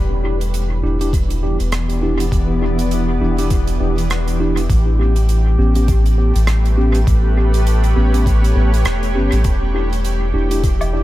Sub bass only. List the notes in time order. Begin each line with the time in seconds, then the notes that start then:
Already playing: E1
0.83 E1
1.60 E1
2.32 E1
3.21 E1
3.80 E1
4.70 A1
5.58 A1
6.35 A1
7.07 A1
7.96 A1
8.56 A1
8.85 E1
9.15 G1
9.32 A1
9.45 E1
10.34 E1